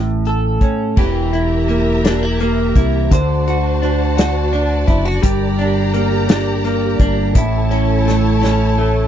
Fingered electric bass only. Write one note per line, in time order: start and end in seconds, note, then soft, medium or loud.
0.00 0.57 A1 medium
0.97 2.72 E1 medium
2.75 3.09 C2 medium
3.11 4.84 D2 medium
4.88 5.21 F#1 medium
5.23 6.96 G1 medium
6.99 7.33 G1 medium
7.35 9.08 A1 medium